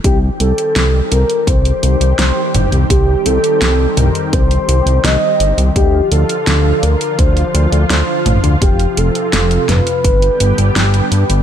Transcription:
<<
  \new Staff \with { instrumentName = "Analog synth lead" } { \time 4/4 \key c \dorian \tempo 4 = 84 g'8 a'4 bes'8 c''4 c''8. r16 | g'8 a'4 bes'8 c''4 ees''8. r16 | g'8 a'4 bes'8 c''4 c''8. r16 | g'8 a'4 b'2 r8 | }
  \new Staff \with { instrumentName = "Analog synth pad" } { \clef bass \time 4/4 \key c \dorian << { <g c' g'>1~ | <g c' g'>1 | <f f'>1~ | <f f'>2 <g b g'>2 | } \\ { ees1~ | ees1 | d1 | c2 d2 | } >> }
  \new Staff \with { instrumentName = "Analog synth bass" } { \clef bass \time 4/4 \key c \dorian c,16 r16 c,16 r16 c,16 r16 c,16 r16 c,16 r16 c,16 c,16 c,16 r16 g,,16 c,16 | c,16 r16 c,16 r16 c,16 r16 c,16 r16 c,16 r16 c,16 c,16 c,16 r16 g,,16 c,16 | d,16 r16 d,16 r16 d,16 r16 d,16 r16 d,16 r16 d,16 d,16 d,16 r16 a,,16 d,16 | f,,16 r16 f,,16 r16 f,,16 r16 f,,16 r16 g,,16 r16 g,,16 g,,16 g,,16 r16 g,16 g,,16 | }
  \new DrumStaff \with { instrumentName = "Drums" } \drummode { \time 4/4 <hh bd>8 hh16 hh16 <hh sn>8 hh16 hh16 <hh bd>16 hh16 hh16 hh16 <hh sn>8 <hh toml>16 hh16 | <hh bd>8 hh16 hh16 <hh sn>8 <hh toml>16 hh16 <hh bd>16 hh16 hh16 hh16 <hh sn>8 hh16 hh16 | <hh bd>8 hh16 hh16 <hh sn>8 hh16 hh16 <hh bd>16 hh16 hh16 hh16 <hh sn>8 <hh toml>16 hh16 | <hh bd>16 hh16 hh16 hh16 <hh sn>16 hh16 <hh sn toml>16 hh16 <hh bd>16 hh16 hh16 hh16 <hh sn>16 hh16 hh16 hh16 | }
>>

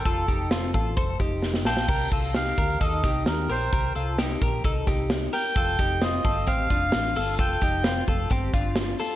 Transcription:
<<
  \new Staff \with { instrumentName = "Melodica" } { \time 4/4 \key c \dorian \tempo 4 = 131 a'4. r2 g''8~ | g''8 r8 f''4 ees''4 bes'8 c''8~ | c''8 r2. g''8~ | g''4 ees''4 f''2 |
g''4. r2 r8 | }
  \new Staff \with { instrumentName = "Clean electric guitar" } { \time 4/4 \key c \dorian <f' a'>8 <ees' g'>8 <c' f'>8 <f' a'>8 <a' c''>8 <ees' g'>4 <f' a'>8 | <g' bes'>8 <f' a'>8 <ees' g'>8 <g' bes'>8 <ees' a'>8 <ees' g'>4 <g' bes'>8 | <g' bes'>8 <f' a'>8 <ees' g'>8 <g' bes'>8 <ees' a'>8 <ees' g'>4 <g' bes'>8 | <f' a'>8 <ees' g'>8 <c' f'>8 <f' a'>8 <c' g'>8 <d' f'>4 <f' a'>8 |
<f' a'>8 <ees' g'>8 <c' f'>8 <f' a'>8 <c' g'>8 <d' f'>4 <f' a'>8 | }
  \new Staff \with { instrumentName = "Fingered electric bass" } { \clef bass \time 4/4 \key c \dorian f,,4. a,,8 f,,8 f,,4 bes,,8 | c,8 c,4 d,8 ees,8 c,8 ees,8 bes,,8 | c,8 c,4 bes,,8 c,8 c,4 r8 | f,,8 f,,4 g,,8 a,,8 f,,8 a,,8 g,,8 |
f,,8 f,,4 f,,8 g,,8 g,,4 r8 | }
  \new DrumStaff \with { instrumentName = "Drums" } \drummode { \time 4/4 <hh bd>8 <hh bd>8 <hh sn>8 <hh bd>8 <hh bd>8 <hh bd>8 sn16 sn16 sn16 sn16 | <cymc bd>8 <hh bd>8 <hh sn>8 <hh bd>8 <hh bd>8 <hh bd sn>8 <hh sn>8 hho8 | <hh bd>8 hh8 <hh sn>8 <hh bd>8 <hh bd>8 <hh bd sn>8 <hh sn>8 hho8 | <hh bd>8 <hh bd>8 <hh sn>8 <hh bd>8 <hh bd>8 <hh bd>8 <hh sn>8 hho8 |
<hh bd>8 <hh bd>8 <hh sn>8 <hh bd>8 <hh bd>8 <hh bd>8 <hh sn>8 hho8 | }
>>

